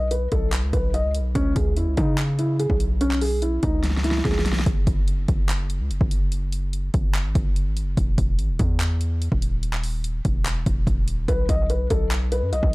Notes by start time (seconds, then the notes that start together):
Already playing: B1
0.11 B4, closed hi-hat
0.32 B1 A4, kick, closed hi-hat
0.52 clap, closed hi-hat
0.63 C#2
0.73 B1 B4, kick, closed hi-hat
0.94 D#5, closed hi-hat
1.04 C#2
1.15 closed hi-hat
1.20 B1
1.35 C#2 C#4, kick, closed hi-hat
1.56 C#2 G#4, kick, closed hi-hat
1.77 E2 E4, closed hi-hat
1.87 C#2
1.97 C#3 D#4, kick, closed hi-hat
2.18 clap, closed hi-hat
2.39 E4, closed hi-hat
2.59 G#4, closed hi-hat
2.70 B1, kick
2.80 closed hi-hat
3.01 C#4, closed hi-hat
3.11 clap
3.21 G#4, open hi-hat
3.42 E4, closed hi-hat
3.63 C#2 D#4, kick, closed hi-hat
3.84 snare, closed hi-hat
3.90 snare
3.97 snare
4.04 E4, snare, closed hi-hat
4.11 snare
4.18 snare
4.25 C#2 G#4, kick, snare, closed hi-hat
4.32 snare
4.39 snare
4.46 B1, snare, closed hi-hat
4.53 snare
4.59 snare
4.66 F#1, kick, closed hi-hat
4.87 F#1, kick, closed hi-hat
5.08 closed hi-hat
5.28 F#1, kick, closed hi-hat
5.49 clap, closed hi-hat
5.70 closed hi-hat
5.80 C#2
5.90 F#1, closed hi-hat
6.01 F#1, kick
6.11 closed hi-hat
6.32 closed hi-hat
6.53 closed hi-hat
6.73 closed hi-hat
6.94 F#1, kick, closed hi-hat
7.15 clap, closed hi-hat
7.25 G#1
7.35 F#1, kick, closed hi-hat
7.56 closed hi-hat
7.66 G#1
7.77 closed hi-hat
7.82 F#1
7.97 E1, kick, closed hi-hat
8.18 E1, kick, closed hi-hat
8.39 G#1, closed hi-hat
8.49 E1
8.59 E2, kick, closed hi-hat
8.80 clap, closed hi-hat
9.01 closed hi-hat
9.22 closed hi-hat
9.32 D#1, kick
9.42 closed hi-hat
9.63 closed hi-hat
9.73 clap
9.84 open hi-hat
10.04 closed hi-hat
10.25 E1, kick, closed hi-hat
10.46 clap, closed hi-hat
10.66 E1, kick, closed hi-hat
10.87 E1, kick, closed hi-hat
11.08 D#1, closed hi-hat
11.28 B1 B4, kick, closed hi-hat
11.49 B1 D#5, kick, closed hi-hat
11.70 B4, closed hi-hat
11.90 B1 A4, kick, closed hi-hat
12.11 clap, closed hi-hat
12.32 B4, closed hi-hat
12.42 F#2
12.53 B1 D#5, closed hi-hat
12.63 B1, kick